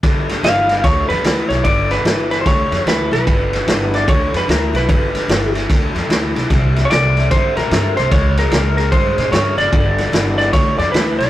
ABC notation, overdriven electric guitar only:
X:1
M:4/4
L:1/8
Q:"Swing" 1/4=148
K:Gmix
V:1 name="Overdriven electric guitar" clef=bass
[G,,D,] [G,,D,] [G,,E,] [G,,E,] [G,,D,] [G,,D,] [G,,E,] [G,,E,] | [G,,D,] [G,,D,] [G,,E,] [G,,E,] [G,,D,] [G,,D,] [G,,E,] [G,,E,] | [G,,D,] [G,,D,] [G,,E,] [G,,E,] [G,,D,] [G,,D,] [G,,E,] [G,,E,] | [G,,D,] [G,,D,] [G,,E,] [G,,E,] [G,,D,] [G,,D,] [G,,E,] [G,,E,] |
[C,G,] [C,G,] [C,A,] [C,A,] [C,G,] [C,G,] [C,A,] [C,A,] | [^C,^G,] [C,G,] [C,_B,] [C,B,] [C,G,] [C,G,] [C,B,] [C,B,] | [G,,D,] [G,,D,] [G,,E,] [G,,E,] [G,,D,] [G,,D,] [G,,E,] [G,,E,] |]